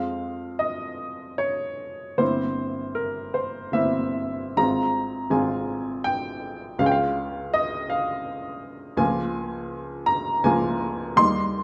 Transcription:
Already playing: F2 G#3 C4 F4 F5
0.59 D#5
1.38 C#5
2.18 G1 A#3 C4 E4 C5
2.95 A#4
3.34 C5
3.72 G1 A#3 C4 E4 E5
4.57 G#1 G#3 C4 F4 A#5
5.30 G#1 G#3 C4 F4 G#5
6.04 G5
6.79 C#2 G#3 C#4 F4 F5
6.86 G5
6.92 F5
7.54 D#5
7.90 F5
8.97 C#2 F3 A#3 F4 G#5
10.06 A#5
10.44 C#2 F3 A#3 F4 G#5
11.16 D#2 G3 A#3 D#4 C6

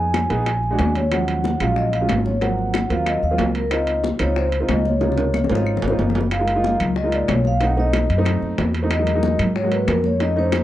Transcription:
Already playing: F2 B3 D#4 G#4 G#5
0.14 high bongo, high conga, high timbale, low timbale, claves
0.30 A#1 B3 D#4 G#4, high bongo, high conga, high timbale
0.46 high bongo, high conga, high timbale, claves
0.63 high bongo, high conga
0.70 G#3 D4 F#4
0.79 D#2, high bongo, low bongo, high conga, high timbale, low timbale
0.95 C#5, high conga, high timbale
1.11 F3 F#3 G#3 C#4 F#5, high bongo, high conga, high timbale, claves
1.28 high conga, high timbale
1.44 high bongo, high conga, low timbale
1.60 A#1 F#3 G#3 C#4 F4 F5, high bongo, high conga, high timbale, claves
1.76 D#5, high bongo, high conga
1.93 F5, high bongo, high conga, high timbale
2.00 F#3 G#3 C#4 F4
2.09 G#1, high bongo, low bongo, high conga, high timbale, low timbale, claves
2.25 C#5, high bongo, high conga
2.41 F3 F#3 A#3 C4 F#5, high bongo, high conga, high timbale
2.59 high conga
2.74 high bongo, high conga, high timbale, low timbale, claves
2.90 D#2 F#3 A#3 C4 F4 F5, high bongo, high conga, high timbale
3.06 D#5, high bongo, high conga, high timbale, claves
3.22 D#2 F5, high bongo, high conga
3.31 F#3 A#3 C4 F4
3.38 C#2, high bongo, low bongo, high conga, high timbale, low timbale
3.54 A#4, high bongo, high timbale
3.71 C4 D#4 F4 D#5, high bongo, high conga, high timbale, claves
3.87 high conga, high timbale
4.03 high bongo, high conga, low timbale
4.19 C#2 C4 D#4 F4 C#5, high bongo, high conga, high timbale, claves
4.36 C5, high bongo, high conga
4.52 high bongo, high conga, high timbale
4.61 C4 D#4 F4
4.69 C#2 D#5, high bongo, low bongo, high conga, high timbale, low timbale, claves
4.85 C#5, high bongo, high conga
5.01 C3 D#4 F4, high bongo, high conga, high timbale
5.12 high bongo
5.17 high conga, high timbale
5.34 high conga, high timbale, claves
5.44 low bongo
5.50 G#1 C4 D#4 F4, low timbale
5.55 low bongo
5.67 high conga, claves
5.77 low bongo
5.82 G#1, high conga, low timbale
5.88 C4 D#4 F4, low bongo
5.99 F#1, low bongo, high conga, low timbale
6.10 low bongo
6.15 high conga, low timbale
6.21 low bongo
6.31 F5, high bongo, high conga, high timbale, claves
6.39 G#3 A#3 D#4 F4
6.48 high conga, high timbale
6.55 G#3 A#3 D#4 F4
6.64 high bongo, high conga, low timbale
6.80 C#2, high bongo, high conga, low conga, high timbale, claves
6.96 D#5, high bongo, high conga
7.04 G#3 A#3 D#4 F4
7.12 D5, high bongo, high conga, high timbale
7.28 B1 C#5, high bongo, low bongo, high conga, high timbale, low timbale, claves
7.44 F5, high bongo, high conga
7.61 A3 C4 D#4 F#5, high bongo, high conga, high timbale
7.77 A3 C4 D#4 D#5, high conga
7.93 high bongo, high conga, high timbale, low timbale, claves
8.09 F#2, high bongo, high conga, high timbale
8.17 A3 C4 D#4
8.25 high bongo, high timbale, claves
8.42 F#2, high bongo, high conga
8.58 E2, high bongo, low bongo, high conga, high timbale, low timbale
8.75 high bongo, high timbale
8.82 A3 C4 D#4
8.91 D#5, high bongo, high conga, high timbale, claves
8.98 F#3 G#3 A#3 D#4
9.07 high conga, high timbale
9.14 F#3 G#3 A#3 D#4
9.23 high bongo, high conga, low timbale
9.39 G#2, high bongo, high conga, low conga, high timbale, claves
9.56 C#5, high bongo, high conga
9.63 F#3 G#3 A#3 F#4
9.72 B4, high bongo, high conga, high timbale
9.87 F2 A#4, high bongo, low bongo, high conga, high timbale, low timbale, claves
10.04 C#5, high bongo, high conga
10.19 A3 C#4 D#4 D#5, high bongo, high conga, high timbale
10.36 A3 C#4 D#4 C5, high conga
10.52 high bongo, high conga, high timbale, low timbale, claves

